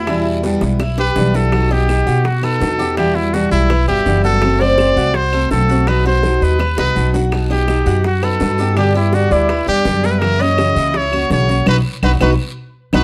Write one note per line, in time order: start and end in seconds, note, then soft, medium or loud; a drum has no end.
0.00 0.56 E2 medium
0.00 0.26 E4 medium
0.07 0.42 B2 medium
0.07 0.43 E3 medium
0.07 0.43 G3 medium
0.07 0.43 B3 medium
0.07 0.42 E4 medium
0.07 0.44 E4 medium
0.07 high bongo medium
0.07 long guiro medium
0.07 claves medium
0.25 high bongo soft
0.43 0.61 B2 medium
0.43 0.61 E3 medium
0.43 0.61 G3 medium
0.43 0.61 B3 medium
0.43 0.60 E4 medium
0.43 0.79 B4 medium
0.43 high bongo medium
0.43 short guiro medium
0.61 1.12 B1 medium
0.61 0.79 G3 soft
0.61 0.79 B3 soft
0.61 0.79 E4 soft
0.61 high bongo loud
0.61 short guiro medium
0.80 0.98 E4 medium
0.80 muted steel-string acoustic guitar stroke medium
0.80 high bongo medium
0.80 long guiro medium
0.80 claves medium
0.98 1.33 G4 medium
0.98 1.37 B4 medium
0.98 low bongo medium
1.16 2.01 B1 medium
1.16 1.33 B2 medium
1.16 1.33 E3 medium
1.16 1.34 G3 medium
1.16 1.33 B3 medium
1.16 1.32 E4 medium
1.16 low bongo loud
1.16 short guiro medium
1.33 1.52 G3 soft
1.33 1.52 B3 soft
1.33 1.51 E4 soft
1.33 1.74 A4 medium
1.33 1.52 B4 medium
1.33 low bongo medium
1.33 short guiro medium
1.52 1.69 B2 medium
1.52 1.70 F#3 medium
1.52 1.70 B3 medium
1.52 1.70 D#4 medium
1.52 1.69 F#4 medium
1.52 high bongo medium
1.52 long guiro medium
1.52 claves medium
1.70 1.88 B3 soft
1.70 1.88 D#4 soft
1.70 1.88 F#4 soft
1.70 2.27 G4 medium
1.70 2.06 D#5 medium
1.70 high bongo soft
1.88 2.23 B2 medium
1.88 2.23 B3 medium
1.88 2.24 D#4 medium
1.88 high bongo medium
1.88 short guiro medium
1.88 claves medium
2.06 2.57 B2 loud
2.06 2.42 F#4 medium
2.06 high bongo soft
2.06 short guiro medium
2.24 2.45 F#4 medium
2.24 muted steel-string acoustic guitar stroke medium
2.24 high bongo medium
2.24 long guiro medium
2.42 2.60 B3 soft
2.42 2.60 D#4 soft
2.42 2.60 F#4 soft
2.42 2.97 A4 loud
2.42 2.78 B4 medium
2.42 claves medium
2.59 3.46 E2 medium
2.59 2.78 B2 medium
2.59 2.78 F#3 medium
2.59 2.78 B3 medium
2.59 2.78 D#4 medium
2.59 2.77 F#4 medium
2.59 high bongo soft
2.59 low bongo medium
2.59 short guiro medium
2.79 2.97 B3 soft
2.79 2.97 D#4 soft
2.79 2.96 F#4 soft
2.79 2.97 G4 medium
2.79 high bongo soft
2.79 short guiro medium
2.97 3.14 B2 medium
2.97 3.15 E3 medium
2.97 3.15 G3 medium
2.97 3.15 B3 medium
2.97 3.15 E4 medium
2.97 3.14 F#4 medium
2.97 3.17 G4 medium
2.97 high bongo medium
2.97 long guiro medium
2.97 claves medium
3.15 3.33 G3 soft
3.15 3.33 B3 soft
3.15 3.35 E4 medium
3.15 3.33 F#4 soft
3.15 high bongo soft
3.33 3.69 B2 medium
3.33 3.69 E3 medium
3.33 3.69 G3 medium
3.33 3.70 B3 medium
3.33 3.51 F#4 medium
3.33 3.70 F#4 medium
3.33 high bongo medium
3.33 short guiro medium
3.51 3.85 B1 medium
3.51 3.85 E4 medium
3.51 3.69 E5 medium
3.51 high bongo soft
3.51 short guiro medium
3.70 3.87 B4 medium
3.70 muted steel-string acoustic guitar stroke medium
3.70 high bongo medium
3.70 long guiro medium
3.70 claves medium
3.88 4.05 G1 medium
3.88 4.06 G3 soft
3.88 4.06 B3 soft
3.88 4.23 E4 medium
3.88 4.05 F#4 soft
3.88 4.22 G4 loud
4.06 4.91 F#1 medium
4.06 4.23 B2 medium
4.06 4.23 E3 medium
4.06 4.24 G3 medium
4.06 4.24 B3 medium
4.06 4.22 F#4 medium
4.06 high bongo soft
4.06 low bongo medium
4.06 short guiro medium
4.24 4.42 G3 soft
4.24 4.42 B3 soft
4.24 4.41 F#4 soft
4.24 4.60 F#4 medium
4.24 4.62 A4 loud
4.24 high bongo soft
4.24 short guiro medium
4.42 4.59 F#3 medium
4.42 4.60 A3 medium
4.42 4.60 C4 medium
4.42 4.58 F#4 medium
4.42 high bongo medium
4.42 long guiro medium
4.42 claves medium
4.60 4.78 A3 soft
4.60 4.78 C4 soft
4.60 4.77 F#4 medium
4.60 4.96 C5 medium
4.60 5.17 D5 loud
4.60 high bongo soft
4.78 5.13 F#3 medium
4.78 5.14 A3 medium
4.78 5.14 C4 medium
4.78 5.14 F#4 medium
4.78 high bongo medium
4.78 short guiro medium
4.78 claves medium
4.96 5.47 C2 loud
4.96 5.32 F#4 medium
4.96 high bongo soft
4.96 short guiro medium
5.14 5.51 C5 loud
5.14 muted steel-string acoustic guitar stroke medium
5.14 high bongo medium
5.14 long guiro medium
5.32 5.50 A3 soft
5.32 5.51 C4 soft
5.32 5.50 F#4 soft
5.32 5.68 A4 medium
5.32 claves medium
5.51 6.36 B1 medium
5.51 5.68 F#3 medium
5.51 5.69 A3 medium
5.51 5.69 C4 medium
5.51 5.68 F#4 medium
5.51 5.89 A4 loud
5.51 high bongo soft
5.51 low bongo medium
5.51 short guiro medium
5.69 5.87 A3 soft
5.69 5.87 C4 soft
5.69 5.87 F#4 medium
5.69 high bongo soft
5.69 short guiro medium
5.87 6.04 B2 medium
5.87 6.05 F#3 medium
5.87 6.05 B3 medium
5.87 6.05 D#4 medium
5.87 6.04 F#4 medium
5.87 6.06 B4 loud
5.87 high bongo medium
5.87 long guiro medium
5.87 claves medium
6.05 6.23 B3 soft
6.05 6.23 D#4 soft
6.05 6.23 F#4 medium
6.05 6.41 F#4 medium
6.05 6.44 C5 loud
6.05 high bongo soft
6.23 6.58 B2 medium
6.23 6.59 F#3 medium
6.23 6.59 B3 medium
6.23 6.59 D#4 medium
6.23 6.59 F#4 medium
6.23 high bongo medium
6.23 short guiro medium
6.41 6.75 D#2 medium
6.41 6.78 B4 medium
6.41 6.60 D#5 medium
6.41 high bongo soft
6.41 short guiro medium
6.59 6.78 B4 medium
6.59 muted steel-string acoustic guitar stroke medium
6.59 high bongo loud
6.59 long guiro medium
6.59 claves medium
6.77 6.95 C2 medium
6.77 6.95 B3 soft
6.77 6.95 D#4 soft
6.77 7.13 D#4 medium
6.77 6.95 F#4 soft
6.77 7.12 B4 medium
6.77 high bongo medium
6.95 7.81 B1 medium
6.95 7.13 B2 medium
6.95 7.13 F#3 medium
6.95 7.13 B3 medium
6.95 7.13 D#4 medium
6.95 7.12 F#4 medium
6.95 short guiro medium
7.13 7.32 B3 soft
7.13 7.32 D#4 soft
7.13 7.31 F#4 soft
7.13 7.49 F#4 medium
7.13 low bongo medium
7.13 short guiro medium
7.32 7.49 B2 medium
7.32 7.50 F#3 medium
7.32 7.50 B3 medium
7.32 7.49 D#4 medium
7.32 7.48 F#4 medium
7.32 high bongo medium
7.32 long guiro medium
7.32 claves medium
7.49 7.68 B3 soft
7.49 7.68 D#4 soft
7.49 7.67 F#4 soft
7.49 8.02 G4 medium
7.49 7.86 D#5 medium
7.49 high bongo soft
7.68 8.03 B2 medium
7.68 8.04 B3 medium
7.68 8.04 D#4 medium
7.68 high bongo medium
7.68 short guiro medium
7.68 claves medium
7.86 8.37 F#2 medium
7.86 8.22 F#4 medium
7.86 high bongo soft
7.86 short guiro medium
8.04 8.25 F#4 medium
8.04 muted steel-string acoustic guitar stroke medium
8.04 high bongo medium
8.04 long guiro medium
8.22 8.40 B3 soft
8.22 8.40 D#4 soft
8.22 8.40 F#4 soft
8.22 8.77 A4 medium
8.22 8.58 B4 medium
8.22 claves medium
8.40 9.25 G2 medium
8.40 8.58 B2 medium
8.40 8.58 F#3 medium
8.40 8.58 B3 medium
8.40 8.59 D#4 medium
8.40 8.57 F#4 medium
8.40 high bongo soft
8.40 low bongo medium
8.40 short guiro medium
8.58 8.77 B3 soft
8.58 8.77 D#4 soft
8.58 8.76 F#4 soft
8.58 8.77 G4 medium
8.58 high bongo soft
8.58 short guiro medium
8.76 8.94 B2 medium
8.76 8.94 D3 medium
8.76 8.95 G3 medium
8.76 8.95 B3 medium
8.76 8.95 D4 medium
8.76 8.94 G4 medium
8.76 high bongo medium
8.76 long guiro medium
8.76 claves medium
8.95 9.13 G3 soft
8.95 9.13 B3 soft
8.95 9.16 E4 medium
8.95 9.13 G4 soft
8.95 9.30 G4 medium
8.95 high bongo soft
9.13 9.48 B2 medium
9.13 9.48 D3 medium
9.13 9.48 G3 medium
9.13 9.48 B3 medium
9.13 9.34 F#4 medium
9.13 9.49 G4 medium
9.13 high bongo medium
9.13 short guiro medium
9.31 9.65 D2 medium
9.31 9.68 E4 medium
9.31 9.49 D5 medium
9.31 high bongo soft
9.31 short guiro medium
9.49 9.67 B4 medium
9.49 muted steel-string acoustic guitar stroke medium
9.49 high bongo medium
9.49 long guiro medium
9.49 claves medium
9.66 9.84 E2 medium
9.66 9.85 G3 soft
9.66 9.85 B3 soft
9.66 10.03 D4 medium
9.66 9.84 G4 soft
9.66 10.06 G4 loud
9.85 10.70 F#2 medium
9.85 10.03 B2 medium
9.85 10.03 D3 medium
9.85 10.03 G3 medium
9.85 10.03 B3 medium
9.85 10.02 G4 medium
9.85 high bongo soft
9.85 low bongo medium
9.85 short guiro medium
10.04 10.22 G3 soft
10.04 10.22 B3 medium
10.04 10.39 E4 medium
10.04 10.21 G4 medium
10.04 10.13 A#4 loud
10.04 high bongo soft
10.04 short guiro medium
10.11 10.20 B4 medium
10.19 10.39 C#3 medium
10.19 10.39 E3 medium
10.19 10.39 A#3 medium
10.19 10.39 C#4 medium
10.19 10.43 A#4 loud
10.19 high bongo medium
10.19 long guiro medium
10.19 claves medium
10.23 10.38 F#4 medium
10.39 10.57 A#3 soft
10.39 10.58 C#4 soft
10.39 10.57 F#4 soft
10.39 10.75 C#5 medium
10.39 10.98 D#5 loud
10.39 high bongo soft
10.57 10.93 C#3 medium
10.57 10.93 E3 medium
10.57 10.94 A#3 medium
10.57 10.94 C#4 medium
10.57 10.94 F#4 medium
10.57 high bongo medium
10.57 short guiro medium
10.57 claves medium
10.76 11.27 C#2 medium
10.76 11.12 E4 medium
10.76 high bongo soft
10.76 short guiro medium
10.94 11.32 C#5 loud
10.94 muted steel-string acoustic guitar stroke medium
10.94 high bongo medium
10.94 long guiro medium
11.11 11.30 A#3 soft
11.11 11.30 C#4 soft
11.11 11.29 F#4 soft
11.11 11.48 F#4 medium
11.11 claves medium
11.30 11.64 B1 medium
11.30 11.48 C#3 medium
11.30 11.48 E3 medium
11.30 11.48 A#3 medium
11.30 11.48 C#4 medium
11.30 11.47 F#4 medium
11.30 11.65 C#5 loud
11.30 high bongo soft
11.30 low bongo medium
11.30 short guiro medium
11.48 11.67 A#3 soft
11.48 11.66 C#4 soft
11.48 11.66 F#4 soft
11.48 11.67 F#4 medium
11.48 high bongo soft
11.48 short guiro medium
11.66 11.80 B1 medium
11.66 11.78 F#3 loud
11.66 11.78 B3 medium
11.66 11.79 D#4 medium
11.66 11.78 D#4 medium
11.66 11.79 F#4 medium
11.66 11.79 B4 medium
11.66 11.77 B4 medium
11.66 low bongo medium
11.66 long guiro loud
11.66 claves loud
12.03 12.16 B1 loud
12.03 12.15 F#3 loud
12.03 12.15 B3 medium
12.03 12.15 D#4 medium
12.03 12.15 F#4 medium
12.03 12.12 B4 loud
12.03 12.15 B4 medium
12.03 low bongo loud
12.03 long guiro medium
12.03 claves medium
12.20 12.34 B1 loud
12.20 12.33 F#3 medium
12.20 12.33 B3 medium
12.20 12.33 D#4 medium
12.20 12.33 F#4 loud
12.20 12.33 B4 medium
12.20 12.30 B4 medium
12.20 low bongo medium
12.20 long guiro loud
12.20 claves medium
12.93 13.04 B1 medium
12.93 13.04 F#3 medium
12.93 13.04 B3 medium
12.93 13.04 D#4 medium
12.93 13.04 F#4 medium
12.93 13.04 B4 loud
12.93 13.03 B4 medium
12.93 low bongo loud
12.93 long guiro loud
12.93 claves loud